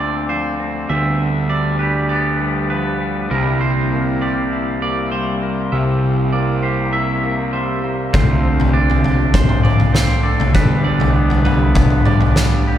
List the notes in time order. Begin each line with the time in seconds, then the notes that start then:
Already playing: D2 D3 C4 D4 F4 A4
0.00 C4 D5
0.29 F3 C5
0.60 C4
0.89 D2 D3 G3 B3 E5
1.50 G3 D5
1.79 G4 B4
2.09 B3 D5
2.41 G3
2.70 F3 B4
3.01 G3
3.30 C2 C3 A#3 E4 A#4
3.61 C5
3.92 A#3
4.22 G4 D5
4.52 E4
4.81 A#3 D5
5.12 G3 C5
5.42 A#3
5.72 C2 C3 E5
6.32 A#3 D5
6.63 G4 C5
6.93 E4 E5
7.23 A#3
7.53 G3 C5
7.84 A#3
8.13 D2 D3 C4 F4 C5, kick, floor tom
8.43 C4
8.60 floor tom
8.73 D4 D5
8.90 floor tom
9.04 F3, floor tom
9.34 D4 C5, kick, floor tom
9.49 mid tom
9.63 F3 D5, mid tom
9.80 floor tom
9.94 C4 C5, snare
10.23 A4 D5
10.40 floor tom
10.54 D2 D3 G3 B3 B4, kick, floor tom
10.84 G3 D5
11.00 floor tom
11.15 B3
11.30 floor tom
11.45 F3 B4, floor tom
11.75 B3, kick, floor tom
11.90 mid tom
12.05 F3 D5, mid tom
12.21 floor tom
12.36 G3, snare
12.67 G4